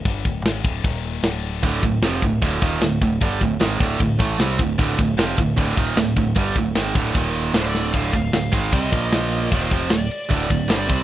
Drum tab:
CC |x-x-x-x-|x-x-x-x-|x-x-x-x-|x-x-x-x-|
SD |--o---o-|--o---o-|--o---o-|--o---o-|
BD |oo-oo---|oo-ooo-o|oo-ooo-o|oo-ooo-o|

CC |x-x-x-x-|xxxxxxxx|xxxxxxxx|
SD |--o---oo|--o---o-|--o---o-|
BD |oo-oo---|oo-ooo--|oo--oo-o|